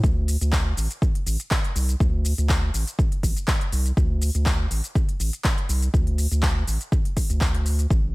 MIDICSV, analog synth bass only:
0, 0, Header, 1, 2, 480
1, 0, Start_track
1, 0, Tempo, 491803
1, 35, Time_signature, 4, 2, 24, 8
1, 7952, End_track
2, 0, Start_track
2, 0, Title_t, "Analog synth bass"
2, 0, Program_c, 0, 38
2, 35, Note_on_c, 0, 38, 99
2, 357, Note_off_c, 0, 38, 0
2, 404, Note_on_c, 0, 38, 90
2, 715, Note_off_c, 0, 38, 0
2, 754, Note_on_c, 0, 33, 85
2, 855, Note_off_c, 0, 33, 0
2, 1234, Note_on_c, 0, 33, 83
2, 1335, Note_off_c, 0, 33, 0
2, 1715, Note_on_c, 0, 36, 81
2, 1905, Note_off_c, 0, 36, 0
2, 1955, Note_on_c, 0, 38, 104
2, 2277, Note_off_c, 0, 38, 0
2, 2325, Note_on_c, 0, 38, 89
2, 2635, Note_off_c, 0, 38, 0
2, 2675, Note_on_c, 0, 33, 81
2, 2775, Note_off_c, 0, 33, 0
2, 3155, Note_on_c, 0, 33, 84
2, 3255, Note_off_c, 0, 33, 0
2, 3636, Note_on_c, 0, 36, 79
2, 3825, Note_off_c, 0, 36, 0
2, 3875, Note_on_c, 0, 38, 101
2, 4198, Note_off_c, 0, 38, 0
2, 4245, Note_on_c, 0, 38, 88
2, 4555, Note_off_c, 0, 38, 0
2, 4595, Note_on_c, 0, 33, 82
2, 4695, Note_off_c, 0, 33, 0
2, 5075, Note_on_c, 0, 33, 80
2, 5175, Note_off_c, 0, 33, 0
2, 5555, Note_on_c, 0, 36, 79
2, 5745, Note_off_c, 0, 36, 0
2, 5795, Note_on_c, 0, 38, 100
2, 6117, Note_off_c, 0, 38, 0
2, 6164, Note_on_c, 0, 38, 91
2, 6475, Note_off_c, 0, 38, 0
2, 6515, Note_on_c, 0, 33, 84
2, 6615, Note_off_c, 0, 33, 0
2, 7124, Note_on_c, 0, 38, 81
2, 7675, Note_off_c, 0, 38, 0
2, 7715, Note_on_c, 0, 33, 101
2, 7952, Note_off_c, 0, 33, 0
2, 7952, End_track
0, 0, End_of_file